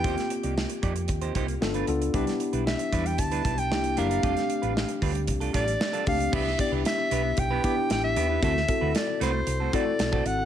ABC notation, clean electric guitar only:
X:1
M:4/4
L:1/16
Q:1/4=115
K:C
V:1 name="Clean electric guitar"
[_B,_EGc] z2 [B,EGd] z2 [B,EGd] z2 [B,EGc] [B,EGc] z2 [A,DF=B] z2 | [G,DEB] z2 [G,DEB] z2 [G,DEB] z2 [G,DEB] [G,DEB] z3 [G,DE_B] [G,DEB] | [G,DFA] z2 [G,DFB] z2 [G,DFB] z2 [G,DFA] [G,DFA] z2 [G,DFA] z2 | [B,EGB] z2 [B,EGB] z2 [B,EGB] z2 [B,EGB] [B,EGB] z3 [B,EGB] [B,EGB] |
[A,C^FA] z2 [A,CFB] z2 [A,CFB] z2 [A,CFA] [A,CFA] z2 [A,CFA] z2 |]